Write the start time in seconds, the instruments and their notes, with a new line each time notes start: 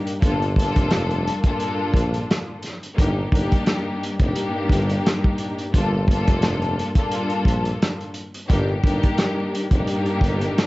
Already playing: string section G2 A#3 D4 D#4 G4
0.07 closed hi-hat
0.22 tuba G1, string section G2 A#3 D4 F4 A4, kick, closed hi-hat
0.42 closed hi-hat
0.56 string section G2 A#3 D4 F4 A4, kick, closed hi-hat
0.76 tuba F1, kick, closed hi-hat
0.91 cross-stick, snare, closed hi-hat
1.10 closed hi-hat
1.27 closed hi-hat
1.44 string section G2 A#3 D4 F4 A4, kick, closed hi-hat
1.60 closed hi-hat
1.94 tuba A#1, kick, closed hi-hat
2.14 closed hi-hat
2.31 cross-stick, snare, closed hi-hat
2.62 snare, closed hi-hat
2.83 closed hi-hat
2.96 tuba G1, string section G2 A#3 D4 D#4 G4, kick, closed hi-hat
3.31 tuba G1, string section G2 A#3 D4 D#4 G4, kick
3.35 closed hi-hat
3.52 kick, closed hi-hat
3.66 cross-stick, snare, closed hi-hat
4.03 closed hi-hat
4.19 tuba F1, string section G2 A#3 D4 D#4 G4, kick, closed hi-hat
4.36 closed hi-hat
4.69 tuba G1, kick, closed hi-hat
4.89 closed hi-hat
5.06 cross-stick, snare, closed hi-hat
5.24 kick
5.38 closed hi-hat
5.58 closed hi-hat
5.73 tuba G1, string section G2 A#3 D4 F4 A4, kick, closed hi-hat
6.08 string section G2 A#3 D4 F4 A4, kick, closed hi-hat
6.27 tuba F1, kick, closed hi-hat
6.42 cross-stick, snare, closed hi-hat
6.62 closed hi-hat
6.79 closed hi-hat
6.95 string section G2 A#3 D4 F4 A4, kick, closed hi-hat
7.11 closed hi-hat
7.30 closed hi-hat
7.45 tuba A#1, kick, closed hi-hat
7.65 closed hi-hat
7.82 cross-stick, snare, closed hi-hat
8.01 closed hi-hat
8.14 closed hi-hat
8.34 closed hi-hat
8.48 tuba G1, string section G2 A#3 D4 D#4 G4, kick, closed hi-hat
8.83 tuba G1, string section G2 A#3 D4 D#4 G4, kick
8.87 closed hi-hat
9.03 kick, closed hi-hat
9.18 cross-stick, snare, closed hi-hat
9.55 closed hi-hat
9.71 tuba F1, string section G2 A#3 D4 D#4 G4, kick, closed hi-hat
9.87 closed hi-hat
10.06 closed hi-hat
10.21 tuba G1, kick, closed hi-hat
10.41 closed hi-hat
10.58 cross-stick, snare, closed hi-hat